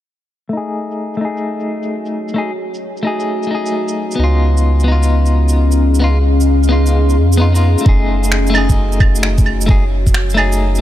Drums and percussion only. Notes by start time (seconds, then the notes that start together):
0.91 shaker
1.14 shaker
1.37 shaker
1.60 shaker
1.83 shaker
2.05 shaker
2.28 shaker
2.74 shaker
2.97 shaker
3.20 shaker
3.43 shaker
3.66 shaker
3.88 shaker
4.11 shaker
4.57 shaker
4.80 shaker
5.03 shaker
5.26 shaker
5.49 shaker
5.72 shaker
5.95 shaker
6.40 shaker
6.63 shaker
6.86 shaker
7.09 shaker
7.32 shaker
7.55 shaker
7.78 shaker
7.86 kick
8.24 shaker
8.32 finger snap
8.47 shaker
8.55 claves
8.69 kick, shaker
8.92 shaker
9.00 kick, claves
9.15 shaker
9.23 finger snap
9.38 kick, shaker
9.46 claves
9.61 shaker
9.69 kick
10.07 kick, shaker
10.14 finger snap
10.30 shaker
10.37 claves
10.52 shaker
10.75 shaker